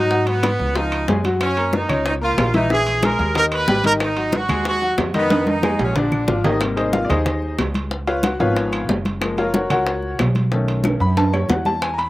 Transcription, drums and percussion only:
0.11 high bongo, high conga
0.27 high bongo, high conga, high timbale
0.43 high bongo, high conga, high timbale, low timbale, claves
0.60 high conga
0.75 high bongo, high conga, high timbale
0.92 high bongo, high conga, high timbale, claves
1.08 high bongo, low bongo, high conga, low timbale
1.24 high bongo, high conga, high timbale
1.41 high bongo, high conga, high timbale, claves
1.57 high conga, high timbale
1.73 high bongo, high conga, low timbale
1.89 high conga, low conga, high timbale, claves
2.06 high bongo, high conga, high timbale
2.22 high conga
2.38 high bongo, low bongo, high timbale, low timbale, claves
2.54 high conga, high timbale
2.70 high bongo, high conga
2.87 high bongo, high conga, high timbale
3.03 high bongo, high conga, high timbale, low timbale, claves
3.19 high conga
3.35 high bongo, high conga, high timbale
3.51 high bongo, high conga, high timbale, claves
3.68 high bongo, low bongo, high conga, low timbale
3.84 high bongo, high conga, high timbale
4.00 high bongo, high conga, high timbale, claves
4.17 high conga, high timbale
4.32 high bongo, high conga, low timbale
4.49 high conga, low conga, high timbale, claves
4.65 high bongo, high conga, high timbale
4.82 high conga
4.98 high bongo, low bongo, high conga, high timbale, low timbale, claves
5.14 high conga, high timbale
5.30 high bongo, high conga, high timbale
5.47 high bongo, high conga, high timbale
5.63 high bongo, high conga, low timbale, claves
5.79 low timbale
5.96 high bongo, low conga, low timbale
6.12 high bongo, low conga, claves
6.28 high bongo, low bongo, low conga
6.44 high bongo, low conga, low timbale
6.61 high bongo, high conga, high timbale, claves
6.77 high conga, high timbale
6.93 high bongo, high conga, low timbale
7.10 high conga, low conga, high timbale, claves
7.26 high bongo, high conga, low conga, high timbale
7.42 high conga
7.58 high bongo, low bongo, high conga, high timbale, low timbale, claves
7.74 high conga, high timbale
7.91 high bongo, high conga
8.07 high bongo, high conga, high timbale
8.23 high bongo, high conga, high timbale, low timbale, claves
8.40 high conga
8.56 high bongo, high conga, high timbale
8.72 high bongo, high conga, high timbale, claves
8.89 high bongo, low bongo, high conga, low timbale
9.05 high bongo, high conga, high timbale
9.21 high bongo, high conga, high timbale, claves
9.37 high conga, high timbale
9.54 high bongo, high conga, low timbale
9.70 high conga, low conga, high timbale, claves
9.86 high bongo, high conga, high timbale
10.02 high conga
10.19 high bongo, low bongo, high conga, high timbale, low timbale, claves
10.35 high conga, high timbale
10.52 high bongo
10.68 high bongo, high conga, high timbale
10.84 high bongo, high conga, high timbale, claves
11.00 high conga
11.17 high bongo, high conga, high timbale
11.33 high bongo, high conga, low timbale, claves
11.49 high bongo, low bongo, high conga, low timbale
11.65 high bongo, high conga, low timbale
11.82 high bongo, high conga, high timbale, claves
11.98 high conga, high timbale

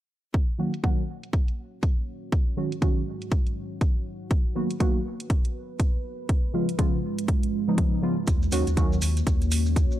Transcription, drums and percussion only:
0.34 kick, closed hi-hat
0.74 closed hi-hat
0.84 kick, closed hi-hat
1.23 closed hi-hat
1.33 kick, closed hi-hat
1.48 closed hi-hat
1.83 kick, closed hi-hat
2.32 kick, closed hi-hat
2.72 closed hi-hat
2.82 kick, closed hi-hat
3.22 closed hi-hat
3.32 kick, closed hi-hat
3.47 closed hi-hat
3.81 kick, closed hi-hat
4.31 kick, closed hi-hat
4.71 closed hi-hat
4.80 kick, closed hi-hat
5.20 closed hi-hat
5.30 kick, closed hi-hat
5.45 closed hi-hat
5.80 kick, closed hi-hat
6.29 kick, closed hi-hat
6.69 closed hi-hat
6.79 kick, closed hi-hat
7.19 closed hi-hat
7.28 kick, closed hi-hat
7.43 closed hi-hat
7.78 kick, closed hi-hat
8.27 kick, closed hi-hat, maracas
8.42 maracas
8.52 open hi-hat, maracas
8.67 closed hi-hat, maracas
8.77 kick, closed hi-hat, maracas
8.93 maracas
9.02 open hi-hat, maracas
9.17 closed hi-hat, maracas
9.27 kick, closed hi-hat, maracas
9.41 closed hi-hat, maracas
9.51 open hi-hat, maracas
9.66 maracas
9.76 kick, closed hi-hat, maracas
9.91 maracas

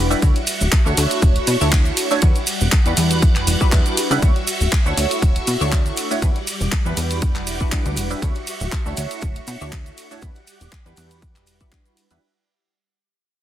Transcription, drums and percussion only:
0.11 maracas, shaker
0.22 kick, closed hi-hat, shaker, maracas
0.36 closed hi-hat, maracas
0.47 open hi-hat, ride, maracas, shaker
0.61 maracas, shaker
0.72 kick, clap, closed hi-hat, maracas, shaker
0.86 shaker, maracas
0.97 open hi-hat, ride, shaker, maracas
1.11 closed hi-hat, maracas, shaker
1.22 kick, closed hi-hat, maracas, shaker
1.36 closed hi-hat, maracas
1.47 open hi-hat, ride, maracas, shaker
1.61 shaker, maracas
1.72 kick, clap, closed hi-hat, shaker, maracas
1.85 closed hi-hat, shaker, maracas
1.97 open hi-hat, ride, maracas, shaker
2.11 shaker, maracas
2.22 kick, closed hi-hat, shaker, maracas
2.35 closed hi-hat, maracas, shaker
2.47 open hi-hat, ride, maracas, shaker
2.61 maracas, shaker
2.72 kick, clap, closed hi-hat, shaker, maracas
2.86 closed hi-hat, maracas, shaker
2.97 open hi-hat, ride, shaker, maracas
3.11 closed hi-hat, maracas, shaker
3.22 kick, closed hi-hat, maracas, shaker
3.36 clap, closed hi-hat, maracas
3.47 open hi-hat, ride, shaker, maracas
3.61 kick, maracas, shaker
3.72 kick, clap, closed hi-hat, shaker, maracas
3.86 closed hi-hat, shaker, maracas
3.97 open hi-hat, ride, maracas, shaker
4.11 closed hi-hat, maracas, shaker
4.22 kick, closed hi-hat, maracas, shaker
4.36 closed hi-hat, maracas
4.47 open hi-hat, ride, shaker, maracas
4.61 maracas, shaker
4.72 kick, clap, closed hi-hat, maracas, shaker
4.86 maracas, shaker
4.97 open hi-hat, ride, maracas, shaker
5.11 closed hi-hat, maracas, shaker
5.22 kick, closed hi-hat, maracas, shaker
5.36 closed hi-hat, maracas
5.47 open hi-hat, ride, maracas, shaker
5.61 shaker, maracas
5.72 kick, clap, closed hi-hat, maracas, shaker
5.86 closed hi-hat, shaker, maracas
5.96 open hi-hat, ride, maracas, shaker
6.11 maracas, shaker
6.22 kick, closed hi-hat, shaker, maracas
6.36 closed hi-hat, maracas
6.47 open hi-hat, ride, shaker, maracas
6.61 maracas, shaker
6.72 kick, clap, closed hi-hat, maracas, shaker
6.86 maracas, shaker
6.97 open hi-hat, ride, maracas, shaker
7.11 closed hi-hat, maracas, shaker
7.22 kick, closed hi-hat, maracas, shaker
7.36 clap, closed hi-hat, maracas
7.47 open hi-hat, ride, maracas, shaker
7.60 kick, maracas, shaker
7.71 kick, clap, closed hi-hat, maracas, shaker
7.85 closed hi-hat, maracas, shaker
7.96 open hi-hat, ride, maracas, shaker
8.10 maracas, shaker
8.22 kick, closed hi-hat, maracas, shaker
8.35 closed hi-hat, maracas
8.47 open hi-hat, ride, maracas, shaker
8.60 maracas, shaker
8.72 kick, clap, closed hi-hat, maracas, shaker
8.86 maracas, shaker
8.97 open hi-hat, ride, maracas, shaker
9.11 closed hi-hat, maracas, shaker
9.21 kick, closed hi-hat, maracas, shaker
9.36 closed hi-hat, maracas
9.47 open hi-hat, ride, maracas, shaker
9.60 maracas, shaker
9.72 kick, clap, closed hi-hat, maracas, shaker
9.86 closed hi-hat, maracas, shaker
9.97 open hi-hat, ride, maracas, shaker
10.11 maracas, shaker
10.21 kick, closed hi-hat, maracas, shaker
10.35 closed hi-hat, maracas
10.47 open hi-hat, ride, maracas, shaker
10.61 closed hi-hat, maracas, shaker
10.72 kick, clap, closed hi-hat, shaker, maracas
10.86 closed hi-hat, maracas, shaker
10.96 open hi-hat, ride, maracas, shaker
11.11 closed hi-hat, maracas, shaker
11.22 kick, closed hi-hat, maracas, shaker
11.36 clap, closed hi-hat, maracas, shaker
11.46 open hi-hat, ride, maracas, shaker
11.61 kick, closed hi-hat, maracas, shaker
11.72 kick, clap, closed hi-hat, maracas, shaker
11.86 closed hi-hat, shaker, maracas
11.97 open hi-hat, ride, shaker, maracas
12.10 closed hi-hat, maracas, shaker

